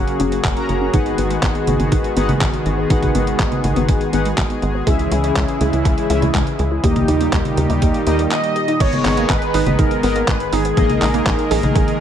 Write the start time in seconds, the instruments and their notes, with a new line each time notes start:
Already playing: analog synth pad C#3 F#3 A#3 F#4 G#4, analog polysynth C#4 F#4 A#4 F#5
0.07 closed hi-hat
0.20 analog synth bass F#1, synth arpeggio sound C#4, closed hi-hat
0.32 synth arpeggio sound A#3, closed hi-hat
0.44 analog synth bass F#1, synth arpeggio sound F#3, kick, clap, closed hi-hat
0.57 analog polysynth C#4 F#4 A#4 A#5, closed hi-hat
0.69 analog synth bass F#1, synth arpeggio sound F#4, closed hi-hat
0.81 synth arpeggio sound C#4
0.93 analog synth bass G#1, analog synth pad D#3 G#3 B3, synth arpeggio sound D#4, analog polysynth D#4 G#4 B4 F#5, kick, closed hi-hat
1.06 closed hi-hat
1.18 analog synth bass G#1, synth arpeggio sound B3, closed hi-hat
1.30 synth arpeggio sound G#3, closed hi-hat
1.43 analog synth bass G#1, synth arpeggio sound F#3, kick, clap, closed hi-hat
1.55 closed hi-hat
1.67 analog synth bass G#1, synth arpeggio sound D#4, closed hi-hat, high conga
1.80 analog synth bass G#1, synth arpeggio sound B3, closed hi-hat
1.92 analog synth bass G#1, synth arpeggio sound D#4, kick, closed hi-hat
2.04 closed hi-hat
2.17 analog synth bass G#1, synth arpeggio sound B3, analog polysynth D#4 G#4 B4 F#5, closed hi-hat
2.29 synth arpeggio sound G#3, closed hi-hat, high conga
2.41 analog synth bass G#1, synth arpeggio sound F#3, kick, clap, closed hi-hat
2.54 closed hi-hat
2.66 analog synth bass G#1, synth arpeggio sound D#4, closed hi-hat
2.78 synth arpeggio sound B3
2.90 analog synth bass G#1, synth arpeggio sound D#4, analog polysynth D#4 G#4 B4 F#5, kick, closed hi-hat
3.02 kick, closed hi-hat, high conga
3.15 analog synth bass G#1, synth arpeggio sound B3, closed hi-hat
3.27 synth arpeggio sound G#3, closed hi-hat
3.39 analog synth bass G#1, synth arpeggio sound F#3, kick, clap, closed hi-hat
3.52 closed hi-hat, high conga
3.64 analog synth bass G#1, synth arpeggio sound D#4, closed hi-hat, high conga
3.76 analog synth bass G#1, synth arpeggio sound B3, closed hi-hat
3.89 analog synth bass G#1, synth arpeggio sound D#4, kick, closed hi-hat
4.01 closed hi-hat
4.13 analog synth bass G#1, synth arpeggio sound B3, analog polysynth D#4 G#4 B4 F#5, closed hi-hat
4.25 synth arpeggio sound G#3, closed hi-hat
4.38 analog synth bass G#1, synth arpeggio sound F#3, kick, clap, closed hi-hat
4.50 closed hi-hat
4.62 analog synth bass G#1, synth arpeggio sound D#4, closed hi-hat
4.75 synth arpeggio sound B3
4.87 analog synth bass C#2, analog synth pad C#3 E3 E4, analog polysynth C#4 E4 G#4 E5, synth arpeggio sound G#4, kick, closed hi-hat
4.99 closed hi-hat
5.12 analog synth bass C#2, synth arpeggio sound E4, closed hi-hat
5.24 synth arpeggio sound C#4, closed hi-hat
5.36 analog synth bass C#2, synth arpeggio sound G#3, kick, clap, closed hi-hat
5.48 closed hi-hat
5.61 analog synth bass C#2, synth arpeggio sound G#4, closed hi-hat, high conga
5.73 analog synth bass C#2, synth arpeggio sound E4, closed hi-hat
5.85 analog synth bass C#2, synth arpeggio sound G#4, kick, closed hi-hat
5.98 closed hi-hat
6.10 analog synth bass C#2, analog polysynth C#4 E4 G#4 E5, synth arpeggio sound E4, closed hi-hat
6.22 synth arpeggio sound C#4, closed hi-hat, high conga
6.34 analog synth bass C#2, synth arpeggio sound G#3, kick, clap, closed hi-hat
6.47 closed hi-hat
6.59 analog synth bass C#2, synth arpeggio sound G#4, closed hi-hat
6.71 synth arpeggio sound E4
6.84 analog synth bass D#2, analog synth pad A#2 D#3 G3 D#4 G4, analog polysynth A#3 D#4 G4 D#5, synth arpeggio sound G4, kick, closed hi-hat
6.96 kick, closed hi-hat, high conga
7.08 analog synth bass D#2, synth arpeggio sound D#4, closed hi-hat
7.21 synth arpeggio sound A#3, closed hi-hat
7.33 analog synth bass D#2, synth arpeggio sound G3, kick, clap, closed hi-hat
7.45 closed hi-hat, high conga
7.57 analog synth bass D#2, synth arpeggio sound G4, closed hi-hat, high conga
7.70 analog synth bass D#2, synth arpeggio sound D#4, closed hi-hat
7.82 analog synth bass D#2, synth arpeggio sound G4, kick, closed hi-hat
7.94 closed hi-hat
8.07 analog synth bass D#2, analog polysynth A#3 D#4 G4 D#5, synth arpeggio sound D#4, closed hi-hat
8.19 synth arpeggio sound A#3, closed hi-hat
8.31 synth arpeggio sound G3, analog synth lead D#5, clap, closed hi-hat
8.44 closed hi-hat
8.56 synth arpeggio sound G4, closed hi-hat
8.68 synth arpeggio sound D#4, closed hi-hat
8.80 analog synth bass G#1, analog synth pad D#3 G#3 B3 G#4, analog polysynth B3 G#4 D#5 A#5, synth arpeggio sound D#4, analog synth lead C#5, kick, closed hi-hat, crash
8.93 closed hi-hat, high conga
9.05 analog synth bass G#1, synth arpeggio sound B3, clap, open hi-hat
9.17 synth arpeggio sound A#3, closed hi-hat
9.30 analog synth bass G#1, synth arpeggio sound G#3, analog synth lead B4, kick, clap, closed hi-hat
9.42 closed hi-hat
9.54 analog synth bass G#1, synth arpeggio sound D#4, open hi-hat
9.66 analog synth bass G#1, synth arpeggio sound B3, closed hi-hat, high conga
9.79 analog synth bass G#1, synth arpeggio sound D#4, analog synth lead A#4, kick, closed hi-hat
9.91 closed hi-hat
10.03 analog synth bass G#1, synth arpeggio sound B3, analog polysynth B3 G#4 A#4 D#5, open hi-hat
10.16 synth arpeggio sound A#3, closed hi-hat
10.28 analog synth bass G#1, synth arpeggio sound G#3, analog synth lead B4, kick, clap, closed hi-hat
10.40 closed hi-hat
10.53 analog synth bass G#1, synth arpeggio sound D#4, analog synth lead G#4, open hi-hat
10.65 synth arpeggio sound B3, closed hi-hat
10.77 analog synth bass A#1, analog polysynth A#3 D#4 G#4 D#5, synth arpeggio sound G#4, analog synth pad A#4, kick, closed hi-hat
10.90 closed hi-hat, high conga
11.02 analog synth bass A#1, synth arpeggio sound D#4, clap, open hi-hat
11.14 synth arpeggio sound A#3, closed hi-hat
11.26 analog synth bass A#1, synth arpeggio sound G#3, kick, clap, closed hi-hat
11.39 closed hi-hat
11.51 analog synth bass A#1, synth arpeggio sound G#4, open hi-hat
11.63 analog synth bass A#1, synth arpeggio sound D#4, closed hi-hat, high conga
11.75 analog synth bass A#1, synth arpeggio sound G#4, kick, closed hi-hat
11.88 closed hi-hat